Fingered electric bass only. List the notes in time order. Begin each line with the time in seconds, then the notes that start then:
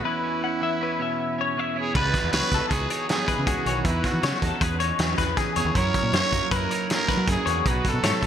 1.95 C#2
2.24 E2
2.33 C#2
2.51 C#2
2.70 C#2
3.38 C#3
3.47 C#2
3.66 B1
3.84 E2
4.14 E3
4.23 C#3
4.42 E2
4.61 E2
4.99 E2
5.18 E2
5.56 E2
5.65 D#2
5.75 F#2
6.03 A#2
6.13 F#2
6.32 F#2
6.51 F#2
7.17 F#3
7.28 F#2
7.46 E2
7.65 B1
7.94 B2
8.03 G#2
8.22 B1